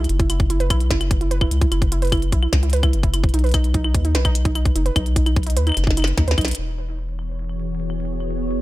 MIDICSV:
0, 0, Header, 1, 5, 480
1, 0, Start_track
1, 0, Key_signature, 4, "major"
1, 0, Tempo, 405405
1, 112, Time_signature, 4, 2, 24, 8
1, 10200, End_track
2, 0, Start_track
2, 0, Title_t, "String machine"
2, 0, Program_c, 0, 50
2, 7791, Note_on_c, 0, 52, 73
2, 8063, Note_on_c, 0, 73, 84
2, 8216, Note_on_c, 0, 59, 87
2, 8527, Note_on_c, 0, 68, 75
2, 8614, Note_on_c, 0, 66, 69
2, 10200, Note_off_c, 0, 52, 0
2, 10200, Note_off_c, 0, 59, 0
2, 10200, Note_off_c, 0, 66, 0
2, 10200, Note_off_c, 0, 68, 0
2, 10200, Note_off_c, 0, 73, 0
2, 10200, End_track
3, 0, Start_track
3, 0, Title_t, "Synth arpeggio sound"
3, 0, Program_c, 1, 84
3, 232, Note_on_c, 1, 64, 75
3, 337, Note_off_c, 1, 64, 0
3, 351, Note_on_c, 1, 64, 76
3, 444, Note_off_c, 1, 64, 0
3, 592, Note_on_c, 1, 64, 81
3, 706, Note_off_c, 1, 64, 0
3, 712, Note_on_c, 1, 71, 105
3, 767, Note_off_c, 1, 71, 0
3, 832, Note_on_c, 1, 64, 102
3, 925, Note_off_c, 1, 64, 0
3, 1073, Note_on_c, 1, 64, 85
3, 1178, Note_off_c, 1, 64, 0
3, 1192, Note_on_c, 1, 64, 78
3, 1285, Note_off_c, 1, 64, 0
3, 1433, Note_on_c, 1, 64, 76
3, 1546, Note_off_c, 1, 64, 0
3, 1551, Note_on_c, 1, 71, 98
3, 1607, Note_off_c, 1, 71, 0
3, 1672, Note_on_c, 1, 64, 97
3, 1765, Note_off_c, 1, 64, 0
3, 1912, Note_on_c, 1, 64, 77
3, 2018, Note_off_c, 1, 64, 0
3, 2033, Note_on_c, 1, 64, 84
3, 2125, Note_off_c, 1, 64, 0
3, 2274, Note_on_c, 1, 64, 82
3, 2387, Note_off_c, 1, 64, 0
3, 2394, Note_on_c, 1, 71, 107
3, 2449, Note_off_c, 1, 71, 0
3, 2513, Note_on_c, 1, 64, 103
3, 2605, Note_off_c, 1, 64, 0
3, 2754, Note_on_c, 1, 64, 78
3, 2861, Note_off_c, 1, 64, 0
3, 2875, Note_on_c, 1, 64, 73
3, 2966, Note_off_c, 1, 64, 0
3, 3113, Note_on_c, 1, 64, 81
3, 3227, Note_off_c, 1, 64, 0
3, 3235, Note_on_c, 1, 71, 106
3, 3289, Note_off_c, 1, 71, 0
3, 3353, Note_on_c, 1, 64, 104
3, 3445, Note_off_c, 1, 64, 0
3, 3593, Note_on_c, 1, 64, 77
3, 3700, Note_off_c, 1, 64, 0
3, 3714, Note_on_c, 1, 64, 75
3, 3806, Note_off_c, 1, 64, 0
3, 3953, Note_on_c, 1, 63, 80
3, 4067, Note_off_c, 1, 63, 0
3, 4072, Note_on_c, 1, 71, 104
3, 4128, Note_off_c, 1, 71, 0
3, 4192, Note_on_c, 1, 63, 102
3, 4285, Note_off_c, 1, 63, 0
3, 4432, Note_on_c, 1, 63, 83
3, 4539, Note_off_c, 1, 63, 0
3, 4553, Note_on_c, 1, 63, 79
3, 4645, Note_off_c, 1, 63, 0
3, 4792, Note_on_c, 1, 63, 80
3, 4906, Note_off_c, 1, 63, 0
3, 4913, Note_on_c, 1, 71, 102
3, 4968, Note_off_c, 1, 71, 0
3, 5032, Note_on_c, 1, 63, 109
3, 5125, Note_off_c, 1, 63, 0
3, 5271, Note_on_c, 1, 63, 75
3, 5377, Note_off_c, 1, 63, 0
3, 5391, Note_on_c, 1, 63, 82
3, 5484, Note_off_c, 1, 63, 0
3, 5631, Note_on_c, 1, 63, 77
3, 5746, Note_off_c, 1, 63, 0
3, 5751, Note_on_c, 1, 71, 107
3, 5807, Note_off_c, 1, 71, 0
3, 5870, Note_on_c, 1, 63, 98
3, 5964, Note_off_c, 1, 63, 0
3, 6110, Note_on_c, 1, 63, 80
3, 6216, Note_off_c, 1, 63, 0
3, 6230, Note_on_c, 1, 63, 79
3, 6324, Note_off_c, 1, 63, 0
3, 6471, Note_on_c, 1, 63, 77
3, 6585, Note_off_c, 1, 63, 0
3, 6591, Note_on_c, 1, 71, 102
3, 6647, Note_off_c, 1, 71, 0
3, 6711, Note_on_c, 1, 63, 108
3, 6804, Note_off_c, 1, 63, 0
3, 6951, Note_on_c, 1, 63, 79
3, 7058, Note_off_c, 1, 63, 0
3, 7072, Note_on_c, 1, 63, 78
3, 7165, Note_off_c, 1, 63, 0
3, 7312, Note_on_c, 1, 63, 82
3, 7426, Note_off_c, 1, 63, 0
3, 7433, Note_on_c, 1, 71, 99
3, 7488, Note_off_c, 1, 71, 0
3, 7552, Note_on_c, 1, 63, 99
3, 7645, Note_off_c, 1, 63, 0
3, 10200, End_track
4, 0, Start_track
4, 0, Title_t, "Analog synth bass"
4, 0, Program_c, 2, 38
4, 112, Note_on_c, 2, 30, 104
4, 832, Note_on_c, 2, 35, 109
4, 850, Note_off_c, 2, 30, 0
4, 1072, Note_on_c, 2, 30, 92
4, 1089, Note_off_c, 2, 35, 0
4, 1743, Note_off_c, 2, 30, 0
4, 1792, Note_on_c, 2, 37, 100
4, 1971, Note_off_c, 2, 37, 0
4, 2032, Note_on_c, 2, 30, 103
4, 2751, Note_on_c, 2, 35, 104
4, 2769, Note_off_c, 2, 30, 0
4, 2930, Note_off_c, 2, 35, 0
4, 2991, Note_on_c, 2, 37, 93
4, 3472, Note_on_c, 2, 30, 106
4, 3490, Note_off_c, 2, 37, 0
4, 3903, Note_off_c, 2, 30, 0
4, 3952, Note_on_c, 2, 35, 102
4, 4671, Note_on_c, 2, 39, 108
4, 4689, Note_off_c, 2, 35, 0
4, 4912, Note_on_c, 2, 35, 94
4, 4930, Note_off_c, 2, 39, 0
4, 5583, Note_off_c, 2, 35, 0
4, 5631, Note_on_c, 2, 30, 96
4, 5810, Note_off_c, 2, 30, 0
4, 5871, Note_on_c, 2, 35, 101
4, 6591, Note_on_c, 2, 39, 107
4, 6609, Note_off_c, 2, 35, 0
4, 6770, Note_off_c, 2, 39, 0
4, 6832, Note_on_c, 2, 30, 101
4, 7263, Note_off_c, 2, 30, 0
4, 7312, Note_on_c, 2, 39, 99
4, 7401, Note_off_c, 2, 39, 0
4, 7432, Note_on_c, 2, 39, 105
4, 7521, Note_off_c, 2, 39, 0
4, 7551, Note_on_c, 2, 35, 99
4, 7730, Note_off_c, 2, 35, 0
4, 7792, Note_on_c, 2, 28, 84
4, 10200, Note_off_c, 2, 28, 0
4, 10200, End_track
5, 0, Start_track
5, 0, Title_t, "Drums"
5, 52, Note_on_c, 9, 42, 38
5, 112, Note_off_c, 9, 42, 0
5, 112, Note_on_c, 9, 42, 66
5, 230, Note_off_c, 9, 42, 0
5, 232, Note_on_c, 9, 36, 105
5, 232, Note_on_c, 9, 42, 38
5, 350, Note_off_c, 9, 36, 0
5, 350, Note_off_c, 9, 42, 0
5, 352, Note_on_c, 9, 42, 96
5, 352, Note_on_c, 9, 75, 51
5, 470, Note_off_c, 9, 42, 0
5, 470, Note_off_c, 9, 75, 0
5, 472, Note_on_c, 9, 36, 117
5, 472, Note_on_c, 9, 42, 35
5, 590, Note_off_c, 9, 36, 0
5, 590, Note_off_c, 9, 42, 0
5, 593, Note_on_c, 9, 42, 59
5, 711, Note_off_c, 9, 42, 0
5, 713, Note_on_c, 9, 42, 41
5, 831, Note_off_c, 9, 42, 0
5, 832, Note_on_c, 9, 36, 104
5, 833, Note_on_c, 9, 42, 91
5, 833, Note_on_c, 9, 75, 73
5, 950, Note_off_c, 9, 36, 0
5, 951, Note_off_c, 9, 42, 0
5, 951, Note_off_c, 9, 75, 0
5, 953, Note_on_c, 9, 42, 39
5, 1071, Note_off_c, 9, 42, 0
5, 1072, Note_on_c, 9, 36, 101
5, 1073, Note_on_c, 9, 38, 114
5, 1073, Note_on_c, 9, 42, 61
5, 1190, Note_off_c, 9, 36, 0
5, 1191, Note_off_c, 9, 38, 0
5, 1191, Note_off_c, 9, 42, 0
5, 1193, Note_on_c, 9, 42, 39
5, 1193, Note_on_c, 9, 75, 53
5, 1311, Note_off_c, 9, 42, 0
5, 1311, Note_off_c, 9, 75, 0
5, 1312, Note_on_c, 9, 36, 116
5, 1313, Note_on_c, 9, 42, 88
5, 1430, Note_off_c, 9, 36, 0
5, 1431, Note_off_c, 9, 42, 0
5, 1433, Note_on_c, 9, 42, 38
5, 1552, Note_off_c, 9, 42, 0
5, 1553, Note_on_c, 9, 42, 62
5, 1671, Note_off_c, 9, 42, 0
5, 1672, Note_on_c, 9, 36, 108
5, 1673, Note_on_c, 9, 75, 78
5, 1790, Note_off_c, 9, 36, 0
5, 1791, Note_off_c, 9, 75, 0
5, 1792, Note_on_c, 9, 42, 90
5, 1911, Note_off_c, 9, 42, 0
5, 1912, Note_on_c, 9, 36, 113
5, 1912, Note_on_c, 9, 42, 39
5, 2030, Note_off_c, 9, 36, 0
5, 2031, Note_off_c, 9, 42, 0
5, 2033, Note_on_c, 9, 42, 65
5, 2033, Note_on_c, 9, 75, 54
5, 2151, Note_off_c, 9, 42, 0
5, 2151, Note_off_c, 9, 75, 0
5, 2152, Note_on_c, 9, 36, 106
5, 2153, Note_on_c, 9, 42, 39
5, 2270, Note_off_c, 9, 36, 0
5, 2272, Note_off_c, 9, 42, 0
5, 2272, Note_on_c, 9, 42, 93
5, 2391, Note_off_c, 9, 42, 0
5, 2393, Note_on_c, 9, 42, 35
5, 2424, Note_off_c, 9, 42, 0
5, 2424, Note_on_c, 9, 42, 28
5, 2453, Note_off_c, 9, 42, 0
5, 2453, Note_on_c, 9, 42, 23
5, 2483, Note_off_c, 9, 42, 0
5, 2483, Note_on_c, 9, 42, 19
5, 2512, Note_on_c, 9, 36, 99
5, 2513, Note_off_c, 9, 42, 0
5, 2513, Note_on_c, 9, 42, 61
5, 2513, Note_on_c, 9, 75, 77
5, 2543, Note_off_c, 9, 42, 0
5, 2543, Note_on_c, 9, 42, 14
5, 2572, Note_off_c, 9, 42, 0
5, 2572, Note_on_c, 9, 42, 11
5, 2602, Note_off_c, 9, 42, 0
5, 2602, Note_on_c, 9, 42, 9
5, 2630, Note_off_c, 9, 36, 0
5, 2631, Note_off_c, 9, 75, 0
5, 2632, Note_off_c, 9, 42, 0
5, 2632, Note_on_c, 9, 42, 38
5, 2751, Note_off_c, 9, 42, 0
5, 2752, Note_on_c, 9, 36, 98
5, 2752, Note_on_c, 9, 42, 85
5, 2870, Note_off_c, 9, 36, 0
5, 2870, Note_off_c, 9, 42, 0
5, 2872, Note_on_c, 9, 75, 52
5, 2990, Note_off_c, 9, 75, 0
5, 2992, Note_on_c, 9, 36, 113
5, 2992, Note_on_c, 9, 38, 113
5, 2992, Note_on_c, 9, 42, 63
5, 3110, Note_off_c, 9, 36, 0
5, 3111, Note_off_c, 9, 38, 0
5, 3111, Note_off_c, 9, 42, 0
5, 3112, Note_on_c, 9, 42, 37
5, 3193, Note_off_c, 9, 42, 0
5, 3193, Note_on_c, 9, 42, 30
5, 3232, Note_off_c, 9, 42, 0
5, 3232, Note_on_c, 9, 42, 84
5, 3273, Note_off_c, 9, 42, 0
5, 3273, Note_on_c, 9, 42, 23
5, 3351, Note_on_c, 9, 36, 98
5, 3353, Note_off_c, 9, 42, 0
5, 3353, Note_on_c, 9, 42, 38
5, 3353, Note_on_c, 9, 75, 77
5, 3470, Note_off_c, 9, 36, 0
5, 3471, Note_off_c, 9, 42, 0
5, 3471, Note_off_c, 9, 75, 0
5, 3473, Note_on_c, 9, 42, 56
5, 3591, Note_off_c, 9, 42, 0
5, 3591, Note_on_c, 9, 36, 103
5, 3593, Note_on_c, 9, 42, 36
5, 3710, Note_off_c, 9, 36, 0
5, 3711, Note_off_c, 9, 42, 0
5, 3713, Note_on_c, 9, 42, 89
5, 3713, Note_on_c, 9, 75, 55
5, 3831, Note_off_c, 9, 42, 0
5, 3831, Note_off_c, 9, 75, 0
5, 3832, Note_on_c, 9, 36, 119
5, 3833, Note_on_c, 9, 42, 17
5, 3893, Note_off_c, 9, 42, 0
5, 3893, Note_on_c, 9, 42, 22
5, 3950, Note_off_c, 9, 36, 0
5, 3953, Note_off_c, 9, 42, 0
5, 3953, Note_on_c, 9, 42, 64
5, 4013, Note_off_c, 9, 42, 0
5, 4013, Note_on_c, 9, 42, 32
5, 4072, Note_off_c, 9, 42, 0
5, 4072, Note_on_c, 9, 42, 17
5, 4102, Note_off_c, 9, 42, 0
5, 4102, Note_on_c, 9, 42, 23
5, 4132, Note_off_c, 9, 42, 0
5, 4132, Note_on_c, 9, 42, 27
5, 4162, Note_off_c, 9, 42, 0
5, 4162, Note_on_c, 9, 42, 33
5, 4191, Note_on_c, 9, 36, 99
5, 4192, Note_off_c, 9, 42, 0
5, 4192, Note_on_c, 9, 42, 90
5, 4192, Note_on_c, 9, 75, 83
5, 4310, Note_off_c, 9, 36, 0
5, 4310, Note_off_c, 9, 42, 0
5, 4310, Note_off_c, 9, 75, 0
5, 4312, Note_on_c, 9, 42, 38
5, 4431, Note_off_c, 9, 42, 0
5, 4431, Note_on_c, 9, 36, 100
5, 4431, Note_on_c, 9, 42, 62
5, 4550, Note_off_c, 9, 36, 0
5, 4550, Note_off_c, 9, 42, 0
5, 4552, Note_on_c, 9, 75, 59
5, 4670, Note_off_c, 9, 75, 0
5, 4671, Note_on_c, 9, 36, 112
5, 4672, Note_on_c, 9, 42, 93
5, 4790, Note_off_c, 9, 36, 0
5, 4790, Note_off_c, 9, 42, 0
5, 4792, Note_on_c, 9, 42, 39
5, 4910, Note_off_c, 9, 42, 0
5, 4912, Note_on_c, 9, 38, 118
5, 4912, Note_on_c, 9, 42, 65
5, 5030, Note_off_c, 9, 38, 0
5, 5030, Note_off_c, 9, 42, 0
5, 5031, Note_on_c, 9, 36, 104
5, 5031, Note_on_c, 9, 42, 40
5, 5031, Note_on_c, 9, 75, 85
5, 5150, Note_off_c, 9, 36, 0
5, 5150, Note_off_c, 9, 42, 0
5, 5150, Note_off_c, 9, 75, 0
5, 5152, Note_on_c, 9, 42, 93
5, 5270, Note_off_c, 9, 42, 0
5, 5271, Note_on_c, 9, 36, 104
5, 5272, Note_on_c, 9, 42, 39
5, 5390, Note_off_c, 9, 36, 0
5, 5390, Note_off_c, 9, 42, 0
5, 5392, Note_on_c, 9, 42, 61
5, 5392, Note_on_c, 9, 75, 51
5, 5510, Note_off_c, 9, 42, 0
5, 5510, Note_off_c, 9, 75, 0
5, 5511, Note_on_c, 9, 36, 113
5, 5512, Note_on_c, 9, 42, 37
5, 5630, Note_off_c, 9, 36, 0
5, 5630, Note_off_c, 9, 42, 0
5, 5631, Note_on_c, 9, 42, 89
5, 5750, Note_off_c, 9, 42, 0
5, 5751, Note_on_c, 9, 42, 41
5, 5870, Note_off_c, 9, 42, 0
5, 5871, Note_on_c, 9, 36, 104
5, 5872, Note_on_c, 9, 42, 70
5, 5872, Note_on_c, 9, 75, 84
5, 5990, Note_off_c, 9, 36, 0
5, 5990, Note_off_c, 9, 42, 0
5, 5990, Note_off_c, 9, 75, 0
5, 5992, Note_on_c, 9, 42, 38
5, 6111, Note_off_c, 9, 42, 0
5, 6111, Note_on_c, 9, 36, 101
5, 6112, Note_on_c, 9, 42, 99
5, 6230, Note_off_c, 9, 36, 0
5, 6230, Note_off_c, 9, 42, 0
5, 6232, Note_on_c, 9, 42, 39
5, 6232, Note_on_c, 9, 75, 57
5, 6350, Note_off_c, 9, 42, 0
5, 6350, Note_off_c, 9, 75, 0
5, 6351, Note_on_c, 9, 36, 114
5, 6352, Note_on_c, 9, 42, 28
5, 6432, Note_off_c, 9, 42, 0
5, 6432, Note_on_c, 9, 42, 40
5, 6470, Note_off_c, 9, 36, 0
5, 6471, Note_off_c, 9, 42, 0
5, 6471, Note_on_c, 9, 42, 42
5, 6511, Note_off_c, 9, 42, 0
5, 6511, Note_on_c, 9, 42, 55
5, 6591, Note_off_c, 9, 42, 0
5, 6591, Note_on_c, 9, 42, 94
5, 6709, Note_off_c, 9, 42, 0
5, 6712, Note_on_c, 9, 42, 41
5, 6712, Note_on_c, 9, 75, 37
5, 6742, Note_off_c, 9, 75, 0
5, 6742, Note_on_c, 9, 75, 49
5, 6772, Note_off_c, 9, 75, 0
5, 6772, Note_on_c, 9, 75, 58
5, 6802, Note_off_c, 9, 75, 0
5, 6802, Note_on_c, 9, 75, 67
5, 6830, Note_off_c, 9, 42, 0
5, 6831, Note_on_c, 9, 38, 30
5, 6831, Note_on_c, 9, 42, 65
5, 6911, Note_off_c, 9, 38, 0
5, 6911, Note_on_c, 9, 38, 41
5, 6920, Note_off_c, 9, 75, 0
5, 6949, Note_off_c, 9, 42, 0
5, 6951, Note_on_c, 9, 36, 97
5, 6992, Note_off_c, 9, 38, 0
5, 6992, Note_on_c, 9, 38, 72
5, 7070, Note_off_c, 9, 36, 0
5, 7071, Note_on_c, 9, 42, 97
5, 7071, Note_on_c, 9, 75, 25
5, 7101, Note_off_c, 9, 75, 0
5, 7101, Note_on_c, 9, 75, 32
5, 7110, Note_off_c, 9, 38, 0
5, 7131, Note_off_c, 9, 75, 0
5, 7131, Note_on_c, 9, 75, 39
5, 7151, Note_on_c, 9, 38, 82
5, 7161, Note_off_c, 9, 75, 0
5, 7161, Note_on_c, 9, 75, 44
5, 7189, Note_off_c, 9, 42, 0
5, 7192, Note_on_c, 9, 42, 41
5, 7270, Note_off_c, 9, 38, 0
5, 7280, Note_off_c, 9, 75, 0
5, 7311, Note_off_c, 9, 42, 0
5, 7312, Note_on_c, 9, 36, 118
5, 7312, Note_on_c, 9, 38, 82
5, 7312, Note_on_c, 9, 42, 63
5, 7430, Note_off_c, 9, 36, 0
5, 7430, Note_off_c, 9, 38, 0
5, 7430, Note_off_c, 9, 42, 0
5, 7432, Note_on_c, 9, 42, 42
5, 7472, Note_on_c, 9, 38, 98
5, 7551, Note_off_c, 9, 42, 0
5, 7551, Note_on_c, 9, 36, 102
5, 7552, Note_on_c, 9, 42, 41
5, 7552, Note_on_c, 9, 75, 86
5, 7590, Note_off_c, 9, 38, 0
5, 7593, Note_off_c, 9, 42, 0
5, 7593, Note_on_c, 9, 42, 52
5, 7632, Note_off_c, 9, 42, 0
5, 7632, Note_on_c, 9, 38, 102
5, 7632, Note_on_c, 9, 42, 60
5, 7670, Note_off_c, 9, 36, 0
5, 7671, Note_off_c, 9, 75, 0
5, 7672, Note_off_c, 9, 42, 0
5, 7672, Note_on_c, 9, 42, 70
5, 7712, Note_off_c, 9, 42, 0
5, 7712, Note_on_c, 9, 42, 71
5, 7733, Note_off_c, 9, 42, 0
5, 7733, Note_on_c, 9, 42, 42
5, 7751, Note_off_c, 9, 38, 0
5, 7753, Note_off_c, 9, 42, 0
5, 7753, Note_on_c, 9, 42, 79
5, 7871, Note_off_c, 9, 42, 0
5, 7913, Note_on_c, 9, 42, 63
5, 8031, Note_off_c, 9, 42, 0
5, 8033, Note_on_c, 9, 42, 92
5, 8033, Note_on_c, 9, 75, 52
5, 8151, Note_off_c, 9, 42, 0
5, 8151, Note_off_c, 9, 75, 0
5, 8153, Note_on_c, 9, 42, 37
5, 8272, Note_off_c, 9, 42, 0
5, 8273, Note_on_c, 9, 42, 61
5, 8391, Note_off_c, 9, 42, 0
5, 8393, Note_on_c, 9, 42, 41
5, 8511, Note_off_c, 9, 42, 0
5, 8512, Note_on_c, 9, 42, 92
5, 8512, Note_on_c, 9, 75, 75
5, 8631, Note_off_c, 9, 42, 0
5, 8631, Note_off_c, 9, 75, 0
5, 8633, Note_on_c, 9, 42, 17
5, 8693, Note_off_c, 9, 42, 0
5, 8693, Note_on_c, 9, 42, 21
5, 8753, Note_off_c, 9, 42, 0
5, 8753, Note_on_c, 9, 42, 64
5, 8814, Note_off_c, 9, 42, 0
5, 8814, Note_on_c, 9, 42, 32
5, 8873, Note_off_c, 9, 42, 0
5, 8873, Note_on_c, 9, 42, 40
5, 8873, Note_on_c, 9, 75, 53
5, 8992, Note_off_c, 9, 42, 0
5, 8992, Note_off_c, 9, 75, 0
5, 8993, Note_on_c, 9, 42, 91
5, 9111, Note_off_c, 9, 42, 0
5, 9173, Note_on_c, 9, 42, 39
5, 9233, Note_off_c, 9, 42, 0
5, 9233, Note_on_c, 9, 42, 62
5, 9351, Note_off_c, 9, 42, 0
5, 9354, Note_on_c, 9, 42, 38
5, 9354, Note_on_c, 9, 75, 73
5, 9472, Note_off_c, 9, 42, 0
5, 9472, Note_off_c, 9, 75, 0
5, 9473, Note_on_c, 9, 42, 90
5, 9534, Note_off_c, 9, 42, 0
5, 9534, Note_on_c, 9, 42, 36
5, 9652, Note_off_c, 9, 42, 0
5, 9713, Note_on_c, 9, 42, 68
5, 9713, Note_on_c, 9, 75, 53
5, 9831, Note_off_c, 9, 42, 0
5, 9831, Note_off_c, 9, 75, 0
5, 9833, Note_on_c, 9, 42, 36
5, 9952, Note_off_c, 9, 42, 0
5, 10073, Note_on_c, 9, 42, 88
5, 10191, Note_off_c, 9, 42, 0
5, 10200, End_track
0, 0, End_of_file